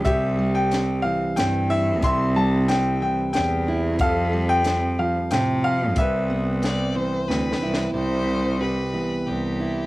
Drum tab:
HH |x--x--x--|x--x--x--|x--x--x--|x--x-----|
SD |---o--o--|---o--o--|---o--o--|---o--ooo|
BD |o--------|o--------|o--------|o--------|

HH |---------|
SD |---------|
BD |---------|